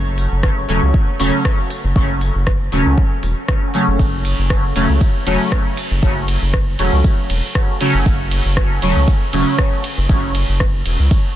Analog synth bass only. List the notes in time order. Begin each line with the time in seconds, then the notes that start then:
Already playing: F#1
0.32 F#1
0.69 E1
0.83 C#2
1.20 E1
1.84 F#1
1.96 F#1
2.35 F#1
2.72 E1
2.86 C#2
3.23 E1
3.88 F#1
3.99 F#1
4.39 F#1
4.76 E1
4.89 C#2
5.27 E1
5.91 F#1
6.03 F#1
6.42 F#1
6.79 E1
6.93 C#2
7.30 E1
7.94 F#1
8.06 F#1
8.45 F#1
8.82 E1
8.96 C#2
9.33 E1
9.98 F#1
10.09 F#1
10.49 F#1
10.86 E1
10.99 C#2